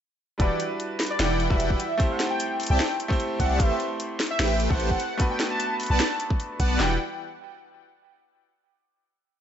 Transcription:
0.38 0.51 E1 loud
0.38 0.53 E3 medium
0.38 1.47 G3 medium
0.38 1.47 D4 medium
0.38 1.48 E4 medium
0.38 0.53 E4 medium
0.38 1.48 F#4 medium
0.38 1.49 B4 medium
0.38 0.53 D5 medium
0.38 0.59 D5 loud
0.38 0.53 F#5 medium
0.38 0.53 G5 medium
0.38 kick loud
0.38 closed hi-hat medium
0.60 closed hi-hat medium
0.80 closed hi-hat medium
1.00 snare medium
1.00 closed hi-hat medium
1.00 open hi-hat loud
1.06 closed hi-hat medium
1.10 1.36 D5 loud
1.20 1.48 E1 medium
1.20 1.48 E3 medium
1.20 1.48 E4 medium
1.20 1.48 D5 medium
1.20 1.48 F#5 medium
1.20 1.48 G5 loud
1.20 snare loud
1.20 closed hi-hat medium
1.40 closed hi-hat medium
1.49 1.77 E1 medium
1.49 1.78 G3 medium
1.49 1.78 D4 medium
1.49 1.78 E4 medium
1.49 1.79 F#4 medium
1.49 1.79 B4 medium
1.49 1.79 D5 medium
1.49 1.63 E5 medium
1.49 1.79 F#5 medium
1.49 1.79 G5 loud
1.49 kick loud
1.60 closed hi-hat medium
1.70 2.12 E5 medium
1.70 kick medium
1.80 closed hi-hat medium
1.98 3.07 A3 medium
1.98 3.07 C4 medium
1.98 3.08 E4 medium
1.98 3.08 G4 medium
1.98 kick loud
1.98 closed hi-hat medium
2.02 3.09 C5 loud
2.10 2.23 F#5 medium
2.20 snare medium
2.20 closed hi-hat medium
2.30 2.56 G5 loud
2.40 closed hi-hat medium
2.60 closed hi-hat medium
2.60 open hi-hat medium
2.66 2.81 C2 medium
2.66 2.83 G4 medium
2.66 2.83 D5 medium
2.66 2.96 G5 loud
2.66 2.83 A5 loud
2.66 closed hi-hat medium
2.70 2.83 C4 medium
2.70 2.83 E5 medium
2.80 snare loud
2.80 closed hi-hat medium
3.00 closed hi-hat medium
3.08 3.56 A3 loud
3.08 3.57 C4 medium
3.08 3.57 E4 medium
3.08 3.58 G4 medium
3.08 3.58 C5 loud
3.08 kick loud
3.20 closed hi-hat medium
3.40 3.61 C2 loud
3.40 3.57 C4 loud
3.40 3.57 G4 medium
3.40 3.57 D5 medium
3.40 3.57 E5 medium
3.40 3.61 F#5 medium
3.40 3.57 A5 loud
3.40 kick medium
3.40 closed hi-hat medium
3.58 3.71 A1 medium
3.58 4.67 A3 medium
3.58 3.73 A3 medium
3.58 4.67 C4 medium
3.58 4.68 E4 medium
3.58 3.73 G4 medium
3.58 4.68 G4 medium
3.58 3.73 B4 medium
3.58 3.73 C5 medium
3.58 3.80 E5 loud
3.58 3.73 A5 medium
3.58 kick loud
3.58 closed hi-hat medium
3.62 4.69 C5 medium
3.80 closed hi-hat medium
4.00 closed hi-hat medium
4.20 snare medium
4.20 closed hi-hat medium
4.20 open hi-hat medium
4.26 closed hi-hat medium
4.30 4.56 E5 loud
4.40 4.68 A1 loud
4.40 4.68 A3 medium
4.40 4.68 G4 medium
4.40 4.68 B4 medium
4.40 4.68 C5 medium
4.40 4.68 G5 medium
4.40 snare loud
4.40 closed hi-hat medium
4.60 closed hi-hat medium
4.69 4.97 A1 loud
4.69 4.98 A3 medium
4.69 4.98 C4 medium
4.69 4.99 E4 medium
4.69 4.99 G4 medium
4.69 4.99 C5 medium
4.69 4.83 F#5 loud
4.69 4.99 A5 loud
4.69 kick loud
4.80 closed hi-hat medium
4.90 5.16 F#5 medium
4.90 kick medium
5.00 closed hi-hat medium
5.18 6.27 A3 medium
5.18 6.27 B3 medium
5.18 6.28 D4 medium
5.18 6.28 F#4 medium
5.18 kick loud
5.18 closed hi-hat medium
5.22 6.29 B4 loud
5.31 5.43 G5 medium
5.40 snare medium
5.40 closed hi-hat medium
5.50 5.76 A5 loud
5.60 closed hi-hat medium
5.80 closed hi-hat medium
5.80 open hi-hat medium
5.86 6.01 B1 medium
5.86 closed hi-hat medium
5.90 6.03 B3 medium
5.90 6.03 B4 medium
5.90 6.03 D5 medium
5.90 6.03 F#5 medium
5.90 6.16 A5 loud
5.90 6.03 A5 loud
6.00 snare loud
6.00 closed hi-hat medium
6.20 closed hi-hat medium
6.30 kick loud
6.40 closed hi-hat medium
6.60 6.78 B1 loud
6.60 6.78 B3 loud
6.60 6.77 B4 medium
6.60 6.78 D5 medium
6.60 6.73 F#5 medium
6.60 6.77 F#5 medium
6.60 6.77 A5 loud
6.60 kick medium
6.60 closed hi-hat medium
6.77 6.98 E1 loud
6.77 6.95 E3 medium
6.77 6.93 G3 medium
6.77 6.94 D4 medium
6.77 6.95 E4 medium
6.77 6.95 D5 medium
6.77 6.95 F#5 medium
6.77 6.95 G5 loud
6.77 6.95 G5 medium
6.77 snare loud
6.77 clap medium
6.81 6.96 F#4 medium
6.81 6.96 B4 medium

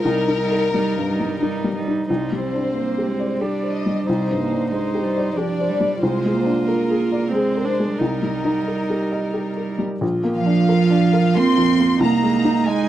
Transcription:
0.04 2.05 C2 soft
0.04 0.40 G3 soft
0.04 0.39 D#4 soft
0.04 1.71 A#4 medium
0.28 0.64 D#4 soft
0.40 0.74 G3 soft
0.40 0.73 D#4 soft
0.52 0.87 A#4 soft
0.74 1.10 G3 soft
0.74 1.07 G3 soft
0.74 1.07 D#4 soft
0.98 1.33 G2 soft
1.08 1.41 G3 soft
1.08 1.41 D#4 soft
1.20 1.56 G3 soft
1.42 1.75 G3 soft
1.42 1.75 D#4 soft
1.42 1.78 D#4 soft
1.64 2.00 G3 soft
1.76 2.08 G3 soft
1.76 2.08 D#4 soft
1.88 2.09 D#4 soft
2.08 4.04 C2 soft
2.08 2.71 G3 soft
2.08 2.40 D#4 soft
2.08 3.37 C5 soft
2.32 2.67 G3 soft
2.41 3.43 C4 soft
2.54 2.89 D4 soft
2.75 3.08 A#3 soft
2.75 3.10 C5 soft
2.98 3.33 G4 soft
3.07 3.43 G#3 soft
3.19 3.55 D5 soft
3.40 4.07 G3 soft
3.40 4.08 D4 soft
3.40 3.76 G4 soft
3.40 3.73 D5 soft
3.63 3.98 C5 soft
3.72 4.06 D#5 soft
3.86 4.21 G3 soft
4.05 4.39 G3 soft
4.05 4.71 D#4 soft
4.05 4.70 C5 soft
4.09 5.99 C2 soft
4.31 4.65 G2 soft
4.40 4.73 A#3 soft
4.52 4.86 D4 soft
4.71 5.05 G#3 soft
4.71 5.38 D#4 soft
4.71 5.35 C5 soft
4.71 5.07 C5 soft
4.94 5.29 G4 soft
5.04 5.35 G3 soft
5.17 5.51 D5 soft
5.35 5.70 F3 soft
5.35 6.01 D4 soft
5.35 5.72 G4 soft
5.35 6.01 D5 soft
5.60 5.94 C5 soft
5.68 6.01 G3 soft
5.80 6.02 G3 soft
6.01 7.96 C2 soft
6.01 6.34 G#3 soft
6.01 7.30 F4 soft
6.01 6.66 C5 soft
6.25 6.59 G#3 soft
6.33 6.64 A#3 medium
6.45 6.80 D4 soft
6.65 7.33 A#3 soft
6.65 7.33 A#4 soft
6.65 7.02 A#4 soft
6.90 7.25 G#4 soft
7.12 7.47 D5 soft
7.31 7.97 G#3 soft
7.31 7.67 C4 soft
7.31 7.69 G#4 soft
7.31 8.00 C5 soft
7.57 7.92 A#4 soft
7.65 8.00 D4 soft
7.80 8.01 G#3 soft
7.98 9.99 C2 soft
7.98 9.77 G3 soft
7.98 9.82 D#4 soft
7.98 9.79 A#4 soft
8.22 8.58 G3 soft
8.45 8.80 D#4 soft
8.68 9.03 A#4 soft
8.90 9.26 G4 soft
9.12 9.48 D#5 soft
9.34 9.70 G4 soft
9.57 9.93 A#4 soft
9.79 10.02 G3 soft
10.01 11.97 A#1 medium
10.01 11.97 F4 medium
10.24 10.60 A#3 soft
10.36 11.39 F3 medium
10.36 11.33 F5 medium
10.46 10.82 D4 soft
10.69 11.05 A#4 medium
10.90 11.27 D4 medium
11.13 11.49 A#4 soft
11.35 11.71 A#3 soft
11.35 12.05 C4 medium
11.35 12.02 C6 medium
11.57 11.93 F2 soft
11.80 12.02 A#3 soft
12.00 12.89 C2 medium
12.00 12.69 A#3 medium
12.00 12.89 D#4 medium
12.00 12.66 A#5 medium
12.23 12.58 G#3 soft
12.45 12.80 D#4 soft
12.66 12.89 G#3 medium
12.66 12.89 D#5 medium
12.66 12.89 G#5 medium

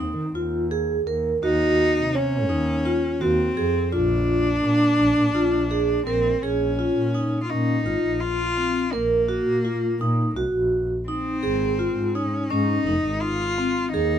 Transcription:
0.00 0.16 D#2 medium
0.00 0.34 C4 medium
0.00 0.26 D#4 medium
0.17 0.34 D#3 medium
0.35 1.03 D#2 medium
0.35 0.62 F4 medium
0.71 0.98 G#4 medium
1.06 1.40 D#2 medium
1.06 1.34 A#4 medium
1.43 1.76 D#2 medium
1.43 2.17 D#4 loud
1.43 1.97 F#4 medium
1.97 2.52 C3 medium
2.15 3.23 C#4 loud
2.15 2.42 C#5 medium
2.49 2.83 D#2 medium
2.49 2.77 D#4 medium
2.86 3.13 F4 medium
3.21 3.54 D#2 medium
3.21 3.94 C4 medium
3.21 3.48 F#4 medium
3.57 3.74 F2 medium
3.57 3.84 G#4 medium
3.93 4.60 A#1 medium
3.93 6.06 D4 medium
3.93 4.47 F4 medium
4.64 4.81 A#2 medium
4.64 4.91 D4 medium
4.99 5.16 A#1 medium
4.99 5.27 D4 medium
5.18 5.35 A#2 medium
5.35 6.03 A#1 medium
5.35 5.62 F4 medium
5.71 5.98 G#4 medium
6.06 6.40 A#1 medium
6.06 6.44 C4 medium
6.06 6.34 A#4 medium
6.42 6.93 A#1 medium
6.42 7.42 C#4 medium
6.42 6.70 G#4 medium
6.79 7.06 F4 medium
6.97 7.30 A#2 medium
7.15 7.42 D#4 medium
7.43 7.51 F4 medium
7.49 7.83 A#2 medium
7.49 7.77 C#4 medium
7.49 8.21 D#4 medium
7.86 8.03 G#1 medium
7.86 8.40 F4 medium
8.05 8.38 A#1 medium
8.20 8.94 F4 medium
8.57 8.84 C4 medium
8.93 9.43 A#1 medium
8.93 10.36 A#3 medium
8.93 9.20 A#4 medium
9.28 9.56 F#4 medium
9.47 9.80 A#2 medium
9.65 9.92 F4 medium
10.00 10.33 A#2 medium
10.00 10.28 D#4 medium
10.36 10.53 C2 medium
10.36 10.91 F#4 medium
10.54 10.87 A#1 medium
11.08 12.16 C4 medium
11.08 11.35 D#4 medium
11.43 11.93 G#1 medium
11.43 11.70 G#4 medium
11.79 12.06 F4 medium
11.96 12.30 G#2 medium
12.14 12.51 C#4 medium
12.14 12.42 D#4 medium
12.50 12.84 G#2 medium
12.50 12.78 C#4 medium
12.50 13.22 D#4 medium
12.87 13.03 F1 medium
12.87 13.41 D#4 medium
13.04 13.37 G#1 medium
13.21 13.91 F4 medium
13.58 13.85 C4 medium
13.92 14.19 D#2 medium
13.92 14.19 D#4 medium
13.92 14.19 G#4 medium

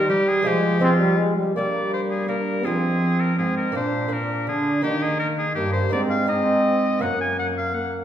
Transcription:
0.00 0.10 D#3 medium
0.00 0.41 A#3 medium
0.00 0.42 D#4 medium
0.00 0.42 G4 medium
0.07 0.43 G3 medium
0.07 0.47 G3 medium
0.07 0.42 G3 medium
0.07 0.30 G4 loud
0.28 0.49 G#4 loud
0.42 1.38 F3 medium
0.42 1.34 F3 medium
0.42 0.79 G#3 medium
0.42 0.80 G#3 medium
0.42 0.80 C4 medium
0.42 0.81 F4 medium
0.47 0.85 G4 loud
0.80 1.53 G#3 medium
0.80 1.53 C4 medium
0.80 0.90 C4 loud
0.80 1.54 F4 medium
0.84 1.20 F4 medium
0.98 1.19 G3 medium
1.17 1.36 G#3 medium
1.36 1.54 G3 medium
1.55 2.67 G3 medium
1.55 2.63 G3 medium
1.55 2.25 A#3 medium
1.55 2.27 A#3 soft
1.55 2.28 D4 soft
1.55 1.91 D5 medium
1.93 2.02 C5 medium
2.10 2.28 G#4 medium
2.27 2.66 A#3 medium
2.27 2.64 A#3 soft
2.27 2.65 D4 soft
2.27 2.67 A#4 medium
2.63 3.40 F3 medium
2.63 3.35 F3 medium
2.63 3.71 G#3 soft
2.63 3.36 C4 medium
2.63 3.71 C4 soft
2.63 3.72 F4 soft
2.63 3.22 G#4 medium
3.20 3.37 A#4 medium
3.37 3.74 G#2 medium
3.37 3.72 G#2 soft
3.37 3.76 C4 medium
3.37 3.56 G#4 medium
3.57 3.75 A#4 medium
3.72 4.49 A#2 medium
3.72 4.44 A#2 medium
3.72 4.07 A#3 soft
3.72 4.08 D4 soft
3.72 4.10 D4 medium
3.76 4.14 C5 medium
4.08 4.80 A#3 soft
4.08 4.81 D4 soft
4.08 4.85 D4 medium
4.13 4.48 A#4 medium
4.47 4.80 D3 medium
4.47 4.83 D3 medium
4.47 4.83 G#4 medium
4.82 5.55 D#3 medium
4.82 5.53 D#3 medium
4.82 5.89 A#3 soft
4.82 5.39 A#3 medium
4.82 5.89 D#4 soft
4.82 5.04 G4 medium
5.02 5.19 G#4 medium
5.19 5.28 A#4 medium
5.39 5.54 G#4 medium
5.55 5.90 G2 soft
5.55 5.93 G2 medium
5.55 5.95 A#3 medium
5.55 5.72 G4 medium
5.73 5.91 C5 medium
5.89 6.98 G#2 medium
5.89 7.04 G#2 medium
5.89 6.25 G#3 soft
5.89 6.26 C4 soft
5.89 6.29 C4 medium
5.89 6.27 D#4 medium
5.89 6.01 D5 medium
6.10 6.28 F5 medium
6.26 6.98 G#3 soft
6.26 6.99 C4 medium
6.26 7.03 C4 medium
6.26 6.99 D#4 soft
6.26 7.03 D#5 medium
6.99 8.04 F#2 medium
6.99 8.04 A#3 medium
6.99 7.74 A#3 medium
6.99 8.04 C#4 soft
6.99 8.04 A#4 soft
6.99 7.20 F#5 loud
7.21 7.39 G#5 loud
7.39 7.47 F#5 medium
7.57 7.76 F5 medium
7.74 8.04 A#3 medium
7.74 7.93 F#5 medium

